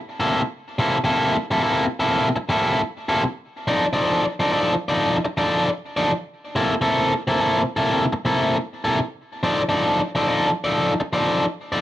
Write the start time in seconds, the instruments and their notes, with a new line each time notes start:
0.20 overdriven electric guitar C3 A#3 E4 A4
0.79 overdriven electric guitar C3 A#3 E4 A4
1.04 overdriven electric guitar C3 A#3 E4 A4
1.51 overdriven electric guitar C3 A#3 E4 A4
1.63 overdriven electric guitar C3 A#3 E4 A4
2.00 overdriven electric guitar C3 A#3 E4 A4
2.36 muted overdriven electric guitar stroke
2.49 overdriven electric guitar C3 A#3 E4 A4
3.09 overdriven electric guitar C3 A#3 E4 A4
3.67 overdriven electric guitar F3 D#4 A4 D5
3.93 overdriven electric guitar F3 D#4 A4 D5
4.40 overdriven electric guitar F3 D#4 A4 D5
4.52 overdriven electric guitar F3 D#4 A4 D5
4.89 overdriven electric guitar F3 D#4 A4 D5
5.25 muted overdriven electric guitar stroke
5.37 overdriven electric guitar F3 D#4 A4 D5
5.97 overdriven electric guitar F3 D#4 A4 D5
6.56 overdriven electric guitar C3 A#3 E4 A4
6.81 overdriven electric guitar C3 A#3 E4 A4
7.27 overdriven electric guitar C3 A#3 E4 A4
7.40 overdriven electric guitar C3 A#3 E4 A4
7.77 overdriven electric guitar C3 A#3 E4 A4
8.13 muted overdriven electric guitar stroke
8.25 overdriven electric guitar C3 A#3 E4 A4
8.84 overdriven electric guitar C3 A#3 E4 A4
9.43 overdriven electric guitar F3 D#4 A4 D5
9.69 overdriven electric guitar F3 D#4 A4 D5
10.15 overdriven electric guitar F3 D#4 A4 D5
10.28 overdriven electric guitar F3 D#4 A4 D5
10.64 overdriven electric guitar F3 D#4 A4 D5
11.00 muted overdriven electric guitar stroke
11.13 overdriven electric guitar F3 D#4 A4 D5
11.72 overdriven electric guitar F3 D#4 A4 D5